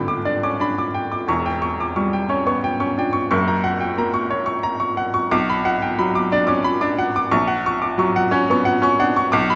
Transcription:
0.00 1.22 G1 medium
0.00 1.23 G2 medium
0.00 0.17 D3 soft
0.00 0.94 G5 soft
0.00 1.30 A5 soft
0.00 0.61 B5 soft
0.00 0.08 D6 medium
0.08 0.35 D6 medium
0.25 0.52 D4 soft
0.25 0.52 D5 soft
0.43 0.60 C#4 soft
0.43 0.70 D6 medium
0.60 0.87 D4 medium
0.60 0.87 B5 soft
0.78 1.04 D6 soft
0.94 1.21 G5 soft
1.12 1.28 D6 soft
1.28 3.29 E1 medium
1.28 3.29 E2 medium
1.28 1.55 C#6 medium
1.46 1.73 G5 soft
1.62 1.89 C#6 medium
1.80 1.97 D6 soft
1.96 2.24 G3 soft
1.96 2.23 C#6 medium
2.13 2.41 G5 medium
2.29 2.57 C#4 medium
2.29 2.57 C#5 medium
2.46 2.64 B3 soft
2.46 2.74 C#6 medium
2.64 2.92 G5 medium
2.80 3.08 C#4 soft
2.80 3.08 C#6 medium
2.98 3.15 D4 soft
2.98 3.26 G5 soft
3.13 3.29 C#6 medium
3.31 5.28 F#1 medium
3.31 5.28 F#2 medium
3.31 3.59 C#6 medium
3.48 3.75 A#5 medium
3.64 3.92 F#5 medium
3.80 3.98 G5 soft
3.98 4.25 A#3 soft
3.98 4.25 A#5 medium
4.14 4.41 C#6 medium
4.30 4.58 C#5 medium
4.46 4.74 C#6 medium
4.63 4.91 A#5 medium
4.80 5.08 C#6 medium
4.97 5.25 F#5 medium
5.14 5.32 C#6 medium
5.31 7.28 B1 medium
5.31 5.59 D6 medium
5.50 5.77 B5 medium
5.65 5.93 F#5 medium
5.82 6.00 G5 soft
5.99 6.27 F#3 medium
5.99 6.27 B5 medium
6.15 6.43 D6 medium
6.32 6.60 D4 medium
6.32 6.60 D5 medium
6.47 6.66 C#4 medium
6.47 6.75 D6 medium
6.64 6.92 B5 medium
6.81 7.09 D4 medium
6.81 7.09 D6 medium
6.98 7.25 F#5 medium
7.16 7.32 D6 medium
7.32 9.28 A#1 medium
7.32 7.58 C#6 medium
7.48 7.74 F#5 medium
7.66 7.92 C#6 medium
7.82 7.98 D6 medium
7.98 8.25 F#3 medium
7.98 8.25 C#6 medium
8.16 8.42 F#5 medium
8.31 8.59 C#4 medium
8.31 8.58 C#5 medium
8.50 8.66 B3 medium
8.50 8.76 C#6 medium
8.65 8.92 F#5 medium
8.82 9.09 C#4 medium
8.82 9.10 C#6 medium
8.99 9.16 D4 medium
8.99 9.27 F#5 medium
9.16 9.33 C#6 medium
9.32 9.55 B1 medium
9.32 9.55 D6 medium
9.50 9.55 B5 medium

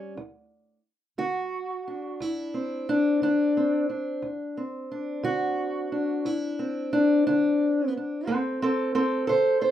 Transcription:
0.00 0.18 G3 soft
0.00 0.13 C#4 soft
0.17 0.78 D2 medium
1.18 1.79 D3 medium
1.18 2.22 F#4 loud
1.88 2.89 D4 soft
2.20 2.81 D2 medium
2.20 2.88 E4 medium
2.54 3.57 C4 soft
2.89 3.22 D4 medium
3.22 3.82 D3 medium
3.22 3.88 D4 medium
3.57 4.25 C4 soft
3.90 4.60 D4 soft
4.22 4.83 D2 medium
4.57 6.59 C4 soft
4.92 5.92 D4 soft
5.23 5.84 D3 medium
5.23 6.26 F#4 loud
5.92 6.92 D4 soft
6.25 6.85 D2 medium
6.25 6.92 E4 medium
6.59 8.27 C4 medium
6.93 7.25 D4 medium
7.27 7.88 D3 medium
7.27 7.93 D4 medium
7.97 8.29 D4 soft
8.27 8.88 D2 medium
8.27 8.60 C4 medium
8.27 8.61 A4 medium
8.62 8.94 C4 medium
8.62 8.94 A4 medium
8.95 9.28 C4 medium
8.95 9.26 A4 medium
9.27 9.71 D3 medium
9.27 9.60 A4 medium
9.27 9.61 C5 medium
9.61 9.71 A4 medium
9.61 9.71 C5 medium

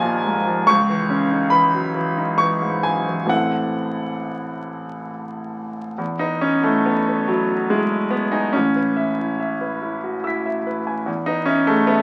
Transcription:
0.00 0.64 D#2 medium
0.00 0.38 A#2 medium
0.00 0.47 F3 medium
0.00 0.70 G3 soft
0.00 0.70 A#3 medium
0.00 0.70 D#4 medium
0.00 0.67 G#5 loud
0.00 0.70 A#5 medium
0.00 0.70 C6 loud
0.00 0.67 C#6 loud
0.25 0.47 G#2 soft
0.47 0.68 F3 medium
0.67 3.26 C#2 medium
0.67 1.50 C#6 loud
0.89 1.22 E3 medium
1.10 1.43 C#4 medium
1.31 1.64 D#4 medium
1.50 1.85 E3 medium
1.50 2.38 B5 medium
1.74 1.95 F#3 soft
1.94 2.29 E3 medium
2.17 2.52 D#4 medium
2.38 2.75 E3 soft
2.38 2.83 C#6 medium
2.62 2.98 G#2 soft
2.83 3.07 F#2 soft
2.83 3.30 G#5 medium
3.08 3.26 E3 soft
3.26 5.92 A1 medium
3.26 5.93 E3 soft
3.26 5.93 C4 soft
3.26 5.94 E4 soft
3.26 5.94 A4 soft
3.26 5.09 F#5 medium
5.98 8.50 E2 medium
6.19 6.42 D#4 medium
6.19 6.56 B4 soft
6.41 6.64 C#4 medium
6.41 6.78 D#5 soft
6.63 6.86 A3 medium
6.63 7.00 E4 soft
6.85 7.28 B3 medium
6.85 7.21 D#5 soft
7.09 7.42 B4 soft
7.28 7.70 F#3 medium
7.28 7.62 E4 soft
7.51 7.71 F#4 soft
7.70 8.12 G#3 medium
7.70 8.04 E4 soft
7.92 8.25 D#5 soft
8.11 8.32 B3 medium
8.11 8.45 B4 soft
8.31 8.53 D#4 medium
8.31 8.54 G#5 soft
8.53 11.04 A1 medium
8.53 10.66 C#4 medium
8.76 9.10 B4 soft
8.97 9.31 E5 soft
9.18 9.52 E4 soft
9.40 9.74 E5 soft
9.61 9.95 B4 soft
9.82 10.16 E4 soft
10.03 10.25 F#4 soft
10.24 10.58 E4 soft
10.24 11.03 E6 soft
10.24 11.05 B6 soft
10.46 10.79 E5 soft
10.67 10.99 B4 soft
10.87 11.08 G#5 soft
11.06 12.02 E2 medium
11.26 11.47 D#4 medium
11.26 11.60 B4 soft
11.45 11.67 C#4 medium
11.45 11.80 E5 soft
11.67 11.88 A3 medium
11.67 12.01 G#4 soft
11.87 12.02 B3 medium
11.87 12.02 E5 soft

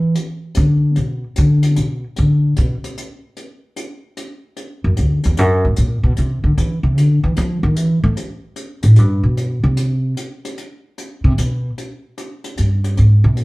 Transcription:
0.00 0.14 E3 loud
0.15 closed hi-hat soft
0.55 0.94 D3 medium
0.55 closed hi-hat medium
0.96 1.23 B2 medium
0.96 closed hi-hat soft
1.36 1.75 D3 medium
1.36 closed hi-hat soft
1.62 closed hi-hat medium
1.76 2.03 B2 medium
1.76 closed hi-hat soft
2.16 2.55 D3 medium
2.16 closed hi-hat soft
2.56 2.74 B2 medium
2.56 closed hi-hat soft
2.84 closed hi-hat soft
2.98 closed hi-hat soft
3.37 closed hi-hat soft
3.76 closed hi-hat soft
4.17 closed hi-hat soft
4.57 closed hi-hat soft
4.84 4.97 F#2 medium
4.97 5.24 D2 medium
4.97 closed hi-hat soft
5.23 5.39 E2 medium
5.23 closed hi-hat soft
5.37 5.64 F#2 medium
5.37 closed hi-hat medium
5.65 5.77 G#2 medium
5.76 6.03 A#2 medium
5.76 closed hi-hat soft
6.03 6.16 B2 medium
6.17 6.43 C3 medium
6.17 closed hi-hat soft
6.44 6.57 D3 medium
6.57 6.83 E3 medium
6.57 closed hi-hat soft
6.83 6.98 C3 medium
6.97 7.23 D3 medium
6.97 closed hi-hat soft
7.24 7.37 E3 medium
7.36 7.63 F3 loud
7.36 closed hi-hat soft
7.63 7.77 D#3 loud
7.76 8.03 E3 medium
7.76 closed hi-hat soft
8.04 8.12 A3 loud
8.17 closed hi-hat soft
8.56 closed hi-hat soft
8.83 8.98 A2 medium
8.83 closed hi-hat soft
8.96 9.23 G2 medium
8.96 closed hi-hat soft
9.23 9.61 B2 medium
9.37 closed hi-hat soft
9.64 10.13 C3 loud
9.77 closed hi-hat medium
10.17 closed hi-hat medium
10.45 closed hi-hat soft
10.58 closed hi-hat soft
10.98 closed hi-hat soft
11.24 11.37 C3 loud
11.38 11.69 B2 medium
11.38 closed hi-hat medium
11.78 closed hi-hat soft
12.18 closed hi-hat soft
12.44 closed hi-hat soft
12.57 12.95 G2 medium
12.57 closed hi-hat soft
12.84 closed hi-hat soft
12.97 13.23 G#2 medium
12.97 closed hi-hat soft
13.24 13.38 C3 loud
13.37 13.44 A#2 medium
13.37 closed hi-hat soft

